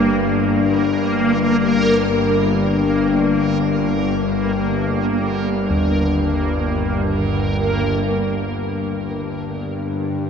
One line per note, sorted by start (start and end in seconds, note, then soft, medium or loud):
0.00 7.99 G1 medium
0.00 7.99 G2 medium
0.00 8.01 A#3 medium
0.00 8.02 A#4 medium
5.70 10.30 D#2 medium
8.00 10.30 G1 medium
8.00 10.30 G2 medium
8.00 10.30 D3 medium